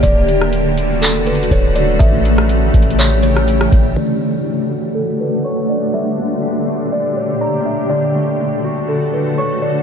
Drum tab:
HH |x-----x-----x-----x-----x-----x-x-x-x-----x-----|x-----x-----x-----x-x-x-x-----x-----x-----x-----|------------------------------------------------|------------------------------------------------|
CP |------------------------x-----------------------|------------------------x-----------------------|------------------------------------------------|------------------------------------------------|
SD |---------r--------------------------------------|---------r-----------------------r-----r--------|------------------------------------------------|------------------------------------------------|
BD |o-----------------------------------o-----------|o-----------------o-----------------------o-----|------------------------------------------------|------------------------------------------------|

HH |------------------------------------------------|
CP |------------------------------------------------|
SD |------------------------------------------------|
BD |------------------------------------------------|